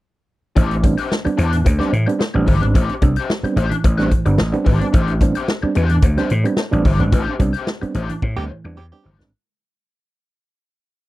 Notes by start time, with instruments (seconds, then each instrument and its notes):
0.56 slap bass A1, reed electric piano A2 E3, overdriven electric guitar D4 G4 C5, kick, closed hi-hat
0.71 reed electric piano C4 D4, closed hi-hat
0.83 reed electric piano G3 B3 C4 D4, muted overdriven electric guitar stroke, kick, closed hi-hat
0.98 overdriven electric guitar D4 G4 C5, closed hi-hat
1.12 snare
1.25 reed electric piano G3 B3 C4 D4, muted overdriven electric guitar stroke, muted slap bass stroke, closed hi-hat
1.38 slap bass E2, overdriven electric guitar D4 G4 C5, closed hi-hat
1.53 reed electric piano A2 E3, muted overdriven electric guitar stroke, closed hi-hat
1.65 slap bass D2, muted overdriven electric guitar stroke, kick, closed hi-hat
1.79 reed electric piano G3 B3 C4 D4, overdriven electric guitar D4 G4 C5, snare, closed hi-hat
1.92 reed electric piano A2 E3, slap bass A2, muted overdriven electric guitar stroke, closed hi-hat
2.07 reed electric piano G3 B3 C4 D4, muted overdriven electric guitar stroke, closed hi-hat
2.19 muted overdriven electric guitar stroke, snare
2.34 slap bass A1, reed electric piano G3 B3 C4 D4, muted overdriven electric guitar stroke
2.46 slap bass G1, reed electric piano A2 E3, overdriven electric guitar D4 G4 C5, kick, open hi-hat
2.62 slap bass G#1, reed electric piano G3 B3 C4 D4, muted overdriven electric guitar stroke, closed hi-hat
2.75 slap bass A1, reed electric piano A2 E3, overdriven electric guitar D4 G4 C5, kick, closed hi-hat
2.89 reed electric piano C4 D4, closed hi-hat
3.01 slap bass C2, reed electric piano G3 B3 C4 D4, muted overdriven electric guitar stroke, kick, closed hi-hat
3.16 overdriven electric guitar D4 G4 C5, closed hi-hat
3.30 snare
3.43 reed electric piano G3 B3 C4 D4, muted slap bass stroke, muted overdriven electric guitar stroke, closed hi-hat
3.56 slap bass A1, overdriven electric guitar D4 G4 C5, closed hi-hat
3.70 reed electric piano A2 E3, muted overdriven electric guitar stroke, closed hi-hat
3.84 slap bass A1, muted overdriven electric guitar stroke, kick, closed hi-hat
3.98 reed electric piano G3 B3 C4 D4, overdriven electric guitar D4 G4 C5, snare, closed hi-hat
4.11 reed electric piano A2 E3, muted overdriven electric guitar stroke, kick, closed hi-hat
4.26 slap bass G1, reed electric piano G3 B3 C4 D4, muted overdriven electric guitar stroke, closed hi-hat
4.38 slap bass A1, muted overdriven electric guitar stroke, snare
4.52 reed electric piano G3 B3 C4 D4, muted overdriven electric guitar stroke, closed hi-hat
4.65 slap bass G#1, reed electric piano A2 E3, overdriven electric guitar D4 G4 C5, kick, open hi-hat
4.80 reed electric piano G3 B3 C4 D4, muted overdriven electric guitar stroke, closed hi-hat
4.93 slap bass A1, reed electric piano A2 E3, overdriven electric guitar D4 G4 C5, kick, closed hi-hat
5.08 reed electric piano C4 D4, closed hi-hat
5.21 reed electric piano G3 B3 C4 D4, muted overdriven electric guitar stroke, kick, closed hi-hat
5.35 overdriven electric guitar D4 G4 C5, closed hi-hat
5.48 snare
5.62 reed electric piano G3 B3 C4 D4, muted overdriven electric guitar stroke, muted slap bass stroke
5.75 slap bass E2, overdriven electric guitar D4 G4 C5, closed hi-hat
5.89 reed electric piano A2 E3, muted overdriven electric guitar stroke, closed hi-hat
6.02 slap bass D2, muted overdriven electric guitar stroke, kick, closed hi-hat
6.17 reed electric piano G3 B3 C4 D4, overdriven electric guitar D4 G4 C5, snare, closed hi-hat
6.30 reed electric piano A2 E3, slap bass A2, muted overdriven electric guitar stroke, closed hi-hat
6.44 reed electric piano G3 B3 C4 D4, muted overdriven electric guitar stroke, closed hi-hat
6.57 muted overdriven electric guitar stroke, snare
6.72 slap bass A1, reed electric piano G3 B3 C4 D4, muted overdriven electric guitar stroke, closed hi-hat
6.85 slap bass G1, reed electric piano A2 E3, overdriven electric guitar D4 G4 C5, kick, open hi-hat
6.99 slap bass G#1, reed electric piano G3 B3 C4 D4, muted overdriven electric guitar stroke, closed hi-hat
7.12 slap bass A1, reed electric piano A2 E3, overdriven electric guitar D4 G4 C5, kick, closed hi-hat
7.26 reed electric piano C4 D4
7.39 slap bass C2, reed electric piano G3 B3 C4 D4, muted overdriven electric guitar stroke, kick, closed hi-hat
7.53 overdriven electric guitar D4 G4 C5, closed hi-hat
7.67 snare
7.82 reed electric piano G3 B3 C4 D4, muted overdriven electric guitar stroke, muted slap bass stroke, closed hi-hat
7.94 slap bass A1, overdriven electric guitar D4 G4 C5, closed hi-hat
8.09 reed electric piano A2 E3, muted overdriven electric guitar stroke, closed hi-hat
8.22 slap bass A2, muted overdriven electric guitar stroke, kick
8.36 slap bass D2, reed electric piano G3 B3 C4 D4, overdriven electric guitar D4 G4 C5, tenor saxophone G4
8.50 reed electric piano A2 E3, muted overdriven electric guitar stroke
8.64 slap bass E2, reed electric piano G3 B3 C4 D4, muted overdriven electric guitar stroke
8.77 slap bass E2, tenor saxophone G4, muted overdriven electric guitar stroke
8.92 reed electric piano G3 B3 C4 D4, tenor saxophone G4, muted overdriven electric guitar stroke
9.04 slap bass G1, reed electric piano A2 E3, overdriven electric guitar D4 G4 C5
9.19 slap bass G#1, reed electric piano G3 B3 C4 D4, muted overdriven electric guitar stroke, snare